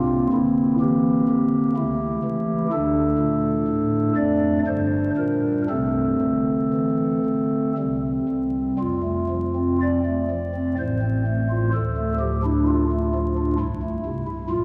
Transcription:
Already playing: C2 C3 A#3 C4 F4
0.33 D3 E4
0.80 E3 G4
1.30 D3
1.76 C#2 C#3 A3 E4
2.24 E3
2.72 D2 D3 A3 D4 A4
3.19 A#2
3.67 A2
4.16 F2 D5
4.67 G1 G2 G3 D4 C5
5.18 A#2 A#4
5.69 C2 C3 A3 C4 A4
6.21 D3
6.74 E3
7.26 D3
7.78 C2 C3 G3 C4
8.29 C2
8.79 F1 F2 F4
9.03 A3
9.30 F3
9.55 C4
9.82 D5
10.06 A3
10.31 F3
10.55 C4
10.79 A1 A2 C5
11.02 C4
11.27 A3
11.50 F4
11.74 D1 D2 A4
11.97 A3
12.20 F3 G4
12.44 D4 E4
12.67 F4
12.92 A3
13.15 F3
13.38 D4
13.59 C1 C2 E4
13.83 A3
14.05 C3
14.27 E4
14.50 A#1 A#2 F4

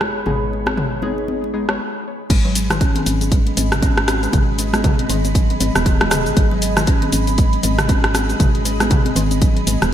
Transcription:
Already playing: G#1 G#3 B3 D#4 G#4 C#5 B5
0.01 cross-stick, low conga
0.26 G#1 G#3 B3 D#4 G#4, mid tom, muted conga
0.53 muted conga
0.66 cross-stick, high conga
0.77 mid tom, muted conga
1.02 G#3 B3 D#4 G#4, high conga, low conga
1.18 muted conga
1.28 high conga
1.44 muted conga
1.54 G#3 B3 D#4 G#4
1.69 G#3 B3 D#4 C#5, cross-stick, muted conga
2.30 G#1 G#3 G#4 D#5 B5, kick, closed hi-hat, crash, muted conga, shaker
2.45 F#3
2.55 open hi-hat, muted conga, shaker
2.70 D#3, cross-stick, closed hi-hat, low conga, shaker
2.81 C#4, kick, closed hi-hat, muted conga, shaker
2.95 D#3, closed hi-hat, high conga
3.06 G#1, open hi-hat, high conga, shaker
3.21 closed hi-hat, muted conga, high conga, shaker
3.32 G#3, kick, closed hi-hat, shaker
3.47 closed hi-hat, muted conga
3.57 G#1 G#3, open hi-hat, high conga, shaker
3.72 cross-stick, closed hi-hat, mid tom, muted conga, shaker
3.82 C#4, kick, closed hi-hat, high conga, low conga, shaker
3.97 G#1, cross-stick, closed hi-hat, muted conga
4.08 F#4, cross-stick, open hi-hat, high conga, shaker
4.23 G#3, closed hi-hat, shaker
4.33 G#1 G#3, kick, closed hi-hat, mid tom, muted conga, shaker
4.59 G#3, open hi-hat, muted conga, shaker
4.73 B3, cross-stick, closed hi-hat, low conga, shaker
4.84 G#3, kick, closed hi-hat, mid tom, muted conga, shaker
4.99 closed hi-hat, high conga
5.10 G#1 D#3, open hi-hat, high conga, shaker
5.25 closed hi-hat, muted conga, high conga, shaker
5.35 F#3, kick, closed hi-hat, shaker
5.50 closed hi-hat, muted conga
5.60 G#1 G#3, open hi-hat, high conga, shaker
5.75 D#1 B3, cross-stick, closed hi-hat, muted conga, shaker
5.86 D#3, kick, closed hi-hat, high conga, shaker
6.01 G#3, cross-stick, closed hi-hat, muted conga, high conga, low conga
6.10 G#4, cross-stick, open hi-hat, mid tom, low conga, shaker
6.26 G#1, closed hi-hat, shaker
6.36 G#1 G#3, kick, closed hi-hat, muted conga, shaker
6.51 F#3
6.62 open hi-hat, muted conga, shaker
6.77 D#3, cross-stick, closed hi-hat, low conga, shaker
6.87 C#4, kick, closed hi-hat, muted conga, shaker
7.02 D#3, closed hi-hat, high conga
7.12 G#1, open hi-hat, high conga, shaker
7.27 closed hi-hat, muted conga, high conga, shaker
7.38 G#3, kick, closed hi-hat, shaker
7.53 closed hi-hat, muted conga
7.63 G#1 G#3, open hi-hat, high conga, shaker
7.78 cross-stick, closed hi-hat, mid tom, muted conga, shaker
7.88 C#4, kick, closed hi-hat, high conga, low conga, shaker
8.04 G#1, cross-stick, closed hi-hat, muted conga
8.14 F#4, cross-stick, open hi-hat, high conga, shaker
8.29 G#3, closed hi-hat, shaker
8.39 G#1 G#3, kick, closed hi-hat, mid tom, muted conga, shaker
8.55 closed hi-hat
8.65 G#3, open hi-hat, muted conga, shaker
8.80 B3, cross-stick, open hi-hat, low conga, shaker
8.90 G#3, kick, closed hi-hat, mid tom, muted conga, shaker
9.05 closed hi-hat, high conga
9.15 G#1 D#3, open hi-hat, high conga, shaker
9.31 closed hi-hat, muted conga, high conga, shaker
9.41 F#3, kick, closed hi-hat, low conga, shaker
9.56 closed hi-hat, muted conga
9.67 G#1 G#3, open hi-hat, high conga, shaker
9.82 D#1 B3, cross-stick, closed hi-hat, shaker

